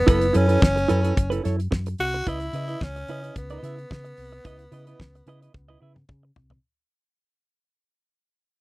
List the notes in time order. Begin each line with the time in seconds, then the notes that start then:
0.07 F#1 B3 E4 A4 B4, kick, closed hi-hat
0.21 muted clean electric guitar stroke, closed hi-hat
0.33 F#2 C#4 E4 A4 B4, closed hi-hat
0.48 E4 A4 B4, closed hi-hat
0.62 F#1, muted clean electric guitar stroke, kick, snare
0.76 muted clean electric guitar stroke, closed hi-hat
0.88 F#2 E4 A4 B4, closed hi-hat
1.03 E4 A4 B4, closed hi-hat
1.16 F#1, muted clean electric guitar stroke, kick, closed hi-hat
1.30 E4 A4 B4, closed hi-hat
1.44 F#2 E4 A4 C#5, snare, closed hi-hat
1.59 muted clean electric guitar stroke, closed hi-hat
1.71 F#2, muted clean electric guitar stroke, kick, snare
1.86 muted clean electric guitar stroke, closed hi-hat
1.98 C2 F#4, open hi-hat
2.14 muted clean electric guitar stroke, closed hi-hat
2.26 C#2 E4 B4 D#5, kick, closed hi-hat
2.40 muted clean electric guitar stroke, closed hi-hat
2.53 C#3 E4 B4 D#5, closed hi-hat
2.68 E4 B4 D#5, closed hi-hat
2.81 C#2 C#4, kick, snare
2.96 muted clean electric guitar stroke, closed hi-hat
3.08 C#3 E4 B4 D#5, closed hi-hat
3.22 E4 B4 D#5, closed hi-hat
3.36 C#2 B3, muted clean electric guitar stroke, kick, closed hi-hat
3.50 E4 B4 D#5, closed hi-hat
3.63 C#3 E4 B4 E5, snare, closed hi-hat
3.78 muted clean electric guitar stroke, closed hi-hat
3.91 C#3, muted clean electric guitar stroke, kick, snare
4.04 muted clean electric guitar stroke, closed hi-hat
4.17 C2, open hi-hat
4.32 muted clean electric guitar stroke, closed hi-hat
4.45 C#2 E4 B4 D#5, kick, closed hi-hat
4.59 muted clean electric guitar stroke, closed hi-hat
4.72 C#3 E4 B4 D#5, closed hi-hat
4.87 E4 B4 D#5, closed hi-hat
4.99 C#2, muted clean electric guitar stroke, kick, snare
5.15 muted clean electric guitar stroke, closed hi-hat
5.26 C#3 E4 B4 D#5, closed hi-hat
5.42 E4 B4 D#5, closed hi-hat
5.54 C#2, kick, high tom
5.68 E4 B4 D#5, high tom
5.80 C#3 E4 B4 E5
5.95 muted clean electric guitar stroke, mid tom
6.09 C#3, muted clean electric guitar stroke, kick, mid tom
6.23 muted clean electric guitar stroke
6.36 C2, floor tom
6.50 muted clean electric guitar stroke, floor tom